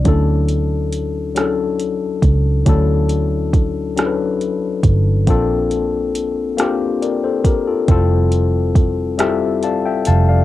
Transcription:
0.04 fingered electric bass D2, tine electric piano F#3 C#4 D4 E4 A4, kick, closed hi-hat
0.48 closed hi-hat
0.92 closed hi-hat
1.35 tine electric piano F#3 C#4 D4 E4 A4, cross-stick, closed hi-hat
1.80 closed hi-hat
2.22 fingered electric bass C#2, kick, closed hi-hat
2.66 fingered electric bass D2, tine electric piano F#3 C#4 D4 E4 A4, kick, closed hi-hat
3.09 closed hi-hat
3.53 kick, closed hi-hat
3.96 tine electric piano F#3 C#4 D4 E4 A4, cross-stick, closed hi-hat
4.06 tine electric piano B4
4.41 closed hi-hat
4.83 fingered electric bass G1, kick, closed hi-hat
5.27 fingered electric bass A#1, tine electric piano A#3 C4 D4 F4 A4, kick, closed hi-hat
5.71 closed hi-hat
6.15 closed hi-hat
6.57 tine electric piano A#3 C4 D4 F4 G4, cross-stick, closed hi-hat
7.02 tine electric piano A#4 D5, closed hi-hat
7.24 tine electric piano A4 C5
7.44 tine electric piano G4 A#4, kick, closed hi-hat
7.67 tine electric piano F4 A4
7.88 fingered electric bass F1, tine electric piano G3 C4 E4 F4 A4, kick, closed hi-hat
8.32 closed hi-hat
8.75 kick, closed hi-hat
9.18 tine electric piano G3 C4 E4 F4 G4 A4 E5, cross-stick, closed hi-hat
9.63 tine electric piano D5 F5 A5, closed hi-hat
9.86 tine electric piano E5 G5
10.05 fingered electric bass F1, tine electric piano F5 A5, closed hi-hat
10.29 tine electric piano D5 F5

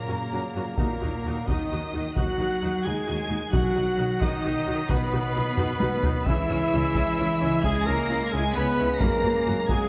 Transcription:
Already playing: cello section A#2, trombone section C#3 F#3, trumpet A#3, french horn section A#3, violin section A#4 A#5
0.09 double bass section F#2, viola section C#4 F#4
0.32 double bass section F#2, viola section C#4 F#4
0.55 double bass section F#2, viola section C#4 F#4
0.77 double bass section D#2, cello section A#2, trombone section D#3, french horn section A#3, trumpet A#3, viola section D#4 F#4, violin section A#4 A#5, taiko
1.02 double bass section D#2, viola section D#4 F#4
1.25 double bass section D#2, viola section D#4 F#4
1.48 double bass section D#2, cello section D#3, french horn section D#4, trumpet D#4, viola section D#4 F#4, violin section D#5 D#6, taiko
1.71 double bass section D#2, viola section D#4 F#4
1.94 double bass section D#2, viola section D#4 F#4
2.16 double bass section D#2, cello section F#3, viola section D#4 F#4, french horn section F#4, trumpet F#4, violin section F#5 F#6, taiko
2.39 double bass section D#2, viola section D#4 F#4
2.62 double bass section D#2, viola section D#4 F#4
2.84 double bass section D#2, cello section G#3, viola section D#4 F#4, trumpet G#4, french horn section G#4, violin section G#5 G#6
3.08 double bass section D#2, viola section D#4 F#4
3.29 double bass section D#2, viola section D#4 F#4
3.52 double bass section B1, trombone section F#3, cello section F#3, viola section D#4 F#4, french horn section F#4, trumpet F#4, violin section F#5 F#6, taiko
3.75 double bass section B1, viola section D#4 F#4
3.98 double bass section B1, viola section D#4 F#4
4.20 double bass section B1, cello section D#3, viola section D#4 F#4, trumpet D#4, french horn section D#4, violin section D#5 D#6, taiko
4.44 double bass section B1, viola section D#4 F#4
4.67 double bass section B1, viola section D#4 F#4
4.89 double bass section B1, cello section B2, french horn section B3, trumpet B3, viola section D#4 F#4, violin section B4 B5, taiko
5.13 double bass section B1, viola section D#4 F#4
5.35 double bass section B1, viola section D#4 F#4
5.57 double bass section B1, viola section D#4 F#4, taiko low-mid
5.80 double bass section B1, viola section D#4 F#4, taiko high
6.03 double bass section B1, viola section D#4 F#4, taiko low
6.26 double bass section C#2, trombone section C#3 G#3, cello section E3, viola section C#4 E4, trumpet E4, french horn section E4, violin section E5 E6, taiko
6.50 double bass section C#2, viola section C#4 E4, taiko low-mid
6.73 double bass section C#2, viola section C#4 E4
6.95 double bass section C#2, viola section C#4 E4, taiko
7.19 double bass section C#2, viola section C#4 E4
7.42 double bass section C#2, viola section C#4 E4
7.63 double bass section C#2, cello section G#3, viola section C#4 E4, french horn section G#4, trumpet G#4, violin section G#5 G#6, taiko
7.85 double bass section C#2, cello section A#3, viola section C#4 E4, french horn section A#4, trumpet A#4, violin section A#5 A#6
8.10 double bass section C#2, viola section C#4 E4
8.29 cello section G#3, french horn section G#4, trumpet G#4, violin section G#6
8.34 double bass section C#2, viola section C#4 E4, violin section G#5
8.55 double bass section C#2, cello section B3, viola section C#4 E4, trumpet B4, french horn section B4, violin section B5 B6
8.79 double bass section C#2, viola section C#4 E4
9.00 double bass section F#2, cello section A#3, viola section A#3 F#4, trumpet A#4, french horn section A#4, violin section A#5 A#6, taiko
9.23 double bass section F#2, viola section A#3 F#4, taiko low-mid
9.47 double bass section F#2, viola section A#3 F#4
9.68 double bass section F#2, trombone section F#3, cello section G#3, viola section A#3 F#4, trumpet G#4, french horn section G#4, violin section G#5 G#6, taiko

